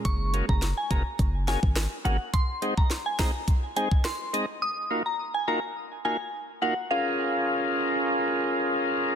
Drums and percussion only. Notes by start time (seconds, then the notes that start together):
0.05 kick, closed hi-hat
0.34 closed hi-hat
0.49 kick
0.62 snare, closed hi-hat
0.91 kick, closed hi-hat
1.19 kick, closed hi-hat
1.48 snare, closed hi-hat
1.63 kick
1.76 cross-stick, snare, closed hi-hat
2.05 closed hi-hat
2.34 kick, closed hi-hat
2.62 closed hi-hat
2.77 kick
2.90 snare, closed hi-hat
3.19 kick, snare, closed hi-hat
3.48 kick, closed hi-hat
3.77 closed hi-hat
3.91 kick
4.05 cross-stick, snare, closed hi-hat
4.34 closed hi-hat